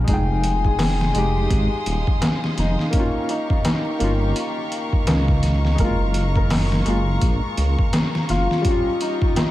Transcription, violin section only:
0.08 2.91 G#3 medium
0.08 8.61 F5 medium
0.08 2.91 C6 medium
0.08 2.91 D#6 medium
2.94 5.76 G4 medium
2.94 9.51 A#5 medium
2.94 9.51 C#6 medium
8.64 9.51 G4 medium
8.64 9.51 D#5 medium

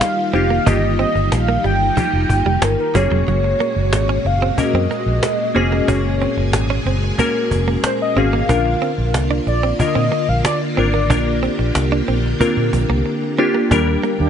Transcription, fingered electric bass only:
0.33 0.58 F1 medium
0.67 1.03 G1 medium
1.15 1.28 G1 medium
1.32 1.56 A#1 loud
1.64 1.89 G1 medium
2.13 2.26 F1 medium
2.30 2.42 G1 medium
2.46 2.58 F1 medium
2.62 2.74 G1 medium
2.95 3.07 F#1 loud
3.11 3.23 F1 medium
3.28 3.52 F#1 loud
3.76 3.92 F#1 loud
3.92 4.17 G#1 medium
4.25 4.50 F#1 medium
4.58 muted fingered electric bass stroke soft
4.74 4.86 F#2 medium
5.06 5.19 A#1 medium
5.55 5.80 F1 medium
5.88 6.25 F#1 loud
6.37 6.53 F#1 medium
6.53 6.78 G#1 medium
6.86 7.10 F#1 loud
7.51 7.76 F1 medium
8.16 8.41 G#1 medium
8.49 8.74 A#1 loud
8.98 9.14 A#1 loud
9.14 9.39 C2 medium
9.47 9.71 A#1 medium
9.80 muted fingered electric bass stroke soft
9.96 10.08 A#2 medium
10.29 10.41 A#1 medium
10.78 11.10 G#1 loud
11.10 11.47 A#1 loud
11.59 11.71 A#1 medium
11.76 12.00 C2 loud
12.08 12.33 A#1 loud
12.57 12.69 A#2 loud
12.73 12.85 A#1 medium
12.90 13.02 C2 medium
13.71 13.95 D#2 loud
14.20 14.30 D#2 loud

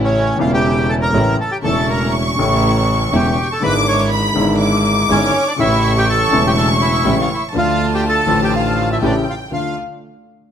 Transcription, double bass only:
0.00 0.35 A1 loud
0.40 1.10 E1 loud
1.13 1.34 A1 medium
1.64 2.34 E1 loud
2.37 3.08 A1 loud
3.12 3.33 E1 loud
3.62 4.32 G#1 loud
4.35 5.05 G#1 loud
5.08 5.29 G#1 loud
5.59 6.28 A1 loud
6.32 7.01 E1 loud
7.04 7.25 A1 loud
7.53 8.23 D2 loud
8.26 8.98 A1 loud
9.01 9.22 A1 loud
9.51 9.72 D2 medium

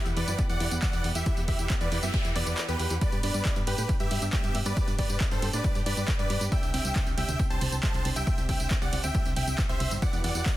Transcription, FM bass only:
0.06 0.13 E2 medium
0.17 0.24 E2 loud
0.28 0.35 F#2 loud
0.50 0.57 E2 medium
0.61 0.68 E2 loud
0.72 0.79 E2 medium
0.93 1.00 E2 medium
1.04 1.11 E2 loud
1.15 1.22 E2 medium
1.37 1.44 E2 medium
1.48 1.55 E2 loud
1.59 1.66 E2 medium
1.81 1.88 E2 medium
1.92 1.99 E2 loud
2.03 2.10 F#2 medium
2.25 2.32 E2 medium
2.36 2.43 E2 loud
2.47 2.54 E2 medium
2.69 2.76 E2 medium
2.80 2.87 E2 loud
2.90 2.97 E2 medium
3.12 3.19 G2 medium
3.23 3.30 G2 loud
3.34 3.41 G2 medium
3.56 3.63 G2 medium
3.67 3.74 G2 loud
3.78 3.85 A2 loud
4.00 4.07 G2 medium
4.11 4.18 G2 loud
4.22 4.29 G2 medium
4.44 4.51 G2 medium
4.55 4.62 G2 loud
4.66 4.73 G2 medium
4.88 4.95 G2 medium
4.99 5.06 G2 loud
5.10 5.17 G2 medium
5.31 5.38 G2 medium
5.42 5.49 G2 loud
5.53 5.60 A2 medium
5.75 5.82 G2 medium
5.86 5.93 G2 loud
5.97 6.04 G2 medium
6.19 6.26 G2 medium
6.30 6.37 G2 loud
6.41 6.48 G2 medium
6.63 6.70 C2 medium
6.74 6.81 C2 loud
6.85 6.92 C2 medium
7.07 7.14 C2 medium
7.18 7.25 C2 loud
7.29 7.35 D2 loud
7.50 7.57 C2 medium
7.61 7.68 C2 loud
7.72 7.79 C2 medium
7.94 8.01 C2 medium
8.05 8.12 C2 loud
8.16 8.23 C2 medium
8.38 8.45 C2 medium
8.49 8.56 C2 loud
8.60 8.67 C2 medium
8.82 8.89 C2 medium
8.93 9.00 C2 loud
9.04 9.11 D2 loud
9.26 9.33 C2 medium
9.37 9.44 C2 loud
9.47 9.54 C2 medium
9.69 9.76 C2 medium
9.80 9.87 C2 loud
9.91 9.98 G1 medium
10.13 10.20 E2 medium
10.24 10.31 E2 loud
10.35 10.42 E2 medium

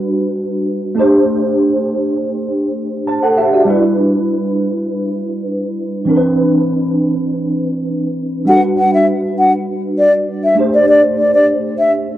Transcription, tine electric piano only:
0.00 0.92 G3 medium
0.00 0.93 D4 medium
0.00 0.94 F#4 medium
0.00 0.98 B4 medium
0.95 3.32 A3 medium
0.95 3.33 D4 medium
0.95 3.04 G4 medium
1.00 3.05 C5 medium
3.07 3.22 C5 medium
3.07 3.22 A5 medium
3.23 3.37 A4 medium
3.23 3.37 F#5 medium
3.37 3.52 G4 medium
3.37 3.52 E5 medium
3.53 3.82 F#4 medium
3.53 3.81 D5 medium
3.65 6.02 G3 medium
3.65 6.03 D4 medium
3.65 6.04 E4 medium
3.70 6.05 B4 medium
6.05 8.42 E3 medium
6.05 8.43 C4 medium
6.05 8.44 D4 medium
6.10 6.16 A#4 medium
6.17 8.48 B4 medium
8.45 10.52 G3 medium
8.45 10.53 D4 medium
8.45 10.54 F#4 medium
8.50 8.55 A4 medium
8.56 10.58 B4 medium
10.55 12.18 A3 medium
10.55 12.18 D4 medium
10.55 12.18 G4 medium
10.60 12.18 C5 medium

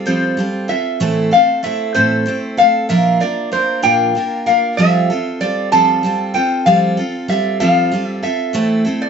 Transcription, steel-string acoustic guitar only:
0.06 0.38 F3 soft
0.06 0.36 G3 soft
0.06 0.37 C4 soft
0.06 0.38 F4 medium
0.06 0.37 A4 soft
0.37 0.69 G3 soft
0.37 0.69 C4 soft
0.37 0.68 F4 soft
0.37 0.67 A4 soft
0.68 1.00 C4 soft
0.68 1.01 F4 soft
0.68 1.00 A4 soft
1.00 1.32 A2 medium
1.00 1.32 E3 medium
1.00 1.32 A3 medium
1.00 1.32 C4 medium
1.00 1.32 E4 medium
1.00 1.30 A4 medium
1.31 1.61 A3 soft
1.31 1.63 C4 soft
1.31 1.63 A4 soft
1.63 1.95 A3 soft
1.63 1.94 C4 soft
1.63 1.94 E4 soft
1.63 1.93 A4 soft
1.94 2.27 A2 soft
1.94 2.27 E3 soft
1.94 2.24 A3 soft
1.94 2.26 C4 medium
1.94 2.26 E4 soft
1.94 2.26 A4 medium
2.26 2.57 A3 soft
2.26 2.58 C4 soft
2.26 2.59 E4 soft
2.26 2.56 A4 soft
2.57 2.89 A3 soft
2.57 2.90 C4 soft
2.57 2.89 A4 soft
2.89 3.20 A#2 medium
2.89 3.21 F3 medium
2.89 3.21 A#3 medium
2.89 3.21 D4 medium
2.89 3.20 F4 medium
2.89 3.19 A#4 medium
3.20 3.50 A#3 soft
3.20 3.51 D4 soft
3.20 3.52 F4 soft
3.20 3.52 A#4 soft
3.52 3.83 A#3 soft
3.52 3.82 D4 soft
3.52 3.82 F4 soft
3.52 3.81 A#4 soft
3.83 4.16 A#2 soft
3.83 4.15 F3 soft
3.83 4.14 A#3 soft
3.83 4.15 D4 soft
3.83 4.15 F4 medium
3.83 4.14 A#4 soft
4.15 4.46 A#3 soft
4.15 4.47 D4 soft
4.15 4.46 F4 soft
4.15 4.45 A#4 soft
4.46 4.78 A#3 soft
4.46 4.79 D4 soft
4.46 4.78 F4 soft
4.46 4.78 A#4 soft
4.78 5.09 F3 medium
4.78 5.10 G3 medium
4.78 5.10 C4 medium
4.78 5.10 F4 medium
4.78 5.09 A4 medium
5.10 5.40 C4 soft
5.10 5.42 F4 soft
5.10 5.41 A4 soft
5.41 5.72 G3 soft
5.41 5.72 C4 soft
5.41 5.71 F4 soft
5.41 5.71 A4 soft
5.72 6.04 F3 soft
5.72 6.02 G3 soft
5.72 6.03 C4 soft
5.72 6.03 F4 soft
5.72 6.03 A4 soft
6.03 6.35 G3 soft
6.03 6.35 C4 soft
6.03 6.34 F4 soft
6.03 6.33 A4 medium
6.34 6.66 C4 soft
6.34 6.66 F4 soft
6.34 6.66 A4 soft
6.66 6.97 F3 medium
6.66 6.98 G3 medium
6.66 6.98 C4 medium
6.66 6.98 F4 medium
6.66 6.96 A4 medium
6.97 7.29 C4 soft
6.97 7.30 F4 soft
6.97 7.29 A4 soft
7.28 7.60 G3 soft
7.28 7.60 C4 soft
7.28 7.60 F4 soft
7.28 7.59 A4 medium
7.60 7.93 F3 soft
7.60 7.90 G3 soft
7.60 7.91 C4 soft
7.60 7.92 F4 medium
7.60 7.91 A4 medium
7.91 8.23 G3 soft
7.91 8.23 C4 soft
7.91 8.23 F4 soft
7.91 8.21 A4 soft
8.23 8.53 C4 soft
8.23 8.54 F4 soft
8.23 8.54 A4 soft
8.53 8.85 A2 medium
8.53 8.85 E3 medium
8.53 8.86 A3 medium
8.53 8.86 C4 medium
8.53 8.85 E4 medium
8.53 8.83 A4 medium
8.85 9.10 A3 soft
8.85 9.10 C4 soft
8.85 9.10 E4 soft
8.85 9.10 A4 soft

